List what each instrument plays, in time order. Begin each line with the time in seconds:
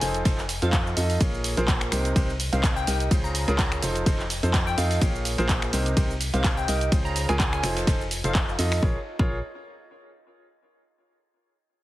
0.01 fm bass F1, grand piano F3 D#4 F4 A4 C5, open hi-hat, ride, shaker
0.14 closed hi-hat, shaker
0.25 fm bass F1, grand piano F3 D#4 F4 A4 C5, kick, snare, closed hi-hat, ride, shaker
0.38 snare, clap, shaker
0.49 open hi-hat, ride, shaker
0.62 fm bass F2, grand piano F3 D#4 F4 A4 C5, synth pluck F5, closed hi-hat, shaker
0.72 synth pluck F5, kick, clap, closed hi-hat, ride, shaker
0.87 shaker
0.97 fm bass F2, grand piano D#4 F4 A4 D#5, open hi-hat, ride, shaker
1.10 open hi-hat, ride, shaker
1.21 fm bass A#1, grand piano A#3 F4 G#4 A#4 C#5, kick, closed hi-hat, ride, shaker
1.34 shaker
1.44 open hi-hat, ride, shaker
1.57 fm bass A#1, grand piano A#3 F4 G#4 A#4 C5, closed hi-hat, ride, shaker
1.68 kick, snare, clap, closed hi-hat, ride, shaker
1.81 finger snap, snare, shaker
1.92 fm bass C2, grand piano C3 D#4 G4 A#4 C5, finger snap, open hi-hat, ride, shaker
2.05 closed hi-hat, shaker
2.16 fm bass C2, grand piano C3 D#4 G4 A#4 C5, kick, closed hi-hat, ride, shaker
2.30 shaker
2.40 open hi-hat, ride, shaker
2.53 fm bass C2, grand piano C3 D#4 G4 A#4 C5, synth pluck F5, closed hi-hat, shaker
2.63 kick, snare, clap, closed hi-hat, ride, shaker
2.76 synth pluck G5, shaker
2.87 fm bass C2, grand piano D#4 G4 A#4 D#5, synth pluck G5, open hi-hat, ride, shaker
3.00 closed hi-hat, ride, shaker
3.11 fm bass C#2, grand piano C#3 C#4 F4 G#4 C5, kick, closed hi-hat, ride, shaker
3.24 synth pluck A#5, ride, shaker
3.35 synth pluck A#5, open hi-hat, ride, shaker
3.48 fm bass C#2, grand piano C#3 C#4 F4 G#4 A#4, closed hi-hat, shaker
3.58 synth pluck A#5, kick, snare, clap, closed hi-hat, ride, shaker
3.72 finger snap, shaker
3.82 fm bass F1, grand piano F3 D#4 F4 A4 C5, open hi-hat, ride, shaker
3.96 closed hi-hat, shaker
4.06 fm bass F1, grand piano F3 D#4 F4 A4 C5, kick, closed hi-hat, ride, shaker
4.20 clap, shaker
4.30 open hi-hat, ride, shaker
4.43 fm bass F2, grand piano F3 D#4 F4 A4 C5, closed hi-hat, shaker
4.54 kick, snare, clap, closed hi-hat, ride, shaker
4.67 synth pluck G5, ride, shaker
4.78 fm bass F2, grand piano D#4 F4 A4 D#5, synth pluck F5, open hi-hat, ride, shaker
4.91 synth pluck F5, open hi-hat, ride, shaker
5.01 fm bass A#1, grand piano A#3 F4 G#4 A#4 C#5, kick, closed hi-hat, ride, shaker
5.15 shaker
5.25 open hi-hat, ride, shaker
5.38 fm bass A#1, grand piano A#3 F4 G#4 A#4 C5, closed hi-hat, ride, shaker
5.49 kick, snare, clap, closed hi-hat, ride, shaker
5.62 finger snap, snare, shaker
5.73 fm bass C2, grand piano C3 D#4 G4 A#4 C5, open hi-hat, ride, shaker
5.86 closed hi-hat, shaker
5.97 fm bass C2, grand piano C3 D#4 G4 A#4 C5, kick, closed hi-hat, ride, shaker
6.11 shaker
6.21 open hi-hat, ride, shaker
6.34 fm bass C2, grand piano C3 D#4 G4 A#4 C5, synth pluck F5, closed hi-hat, shaker
6.44 kick, snare, clap, closed hi-hat, ride, shaker
6.57 synth pluck G5, shaker
6.68 fm bass C2, grand piano D#4 G4 A#4 D#5, synth pluck G5, open hi-hat, ride, shaker
6.81 closed hi-hat, ride, shaker
6.92 fm bass C#2, grand piano C#3 C#4 F4 G#4 C5, kick, closed hi-hat, ride, shaker
7.05 synth pluck A#5, ride, shaker
7.15 synth pluck A#5, open hi-hat, ride, shaker
7.29 fm bass C#2, grand piano C#3 C#4 F4 G#4 A#4, synth pluck G#5, closed hi-hat, shaker
7.40 synth pluck G#5, kick, snare, clap, closed hi-hat, ride, shaker
7.53 synth pluck G#5, finger snap, shaker
7.62 fm bass F1, grand piano F3 D#4 F4 A4 C5, finger snap, snare, open hi-hat, ride, shaker
7.76 snare, closed hi-hat, ride, shaker
7.87 fm bass F1, grand piano F3 D#4 F4 A4 C5, kick, snare, closed hi-hat, ride, shaker
8.01 shaker
8.11 open hi-hat, ride, shaker
8.24 fm bass F1, grand piano F3 D#4 F4 A4 C5, synth pluck F5, closed hi-hat, shaker
8.35 synth pluck F5, kick, clap, closed hi-hat, ride, shaker
8.49 shaker
8.58 fm bass F2, grand piano D#4 F4 A4 D#5, open hi-hat, ride, shaker
8.72 finger snap, open hi-hat, shaker
8.83 fm bass A#1, grand piano F4 G#4 A#4 C#5, kick
9.19 fm bass A#1, grand piano F4 G#4 A#4 C#5, kick